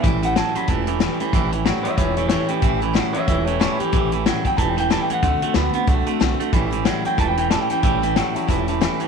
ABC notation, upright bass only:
X:1
M:4/4
L:1/8
Q:"Swing" 1/4=185
K:Amix
V:1 name="Upright bass" clef=bass
A,,,3 z E,,,3 z | A,,,3 z E,,,3 z | A,,,3 z E,,,3 z | A,,,3 z E,,,3 z |
D,, z D,, z =C,, z B,,, z | A,,,3 z E,,,3 z | A,,,3 z E,,,3 z |]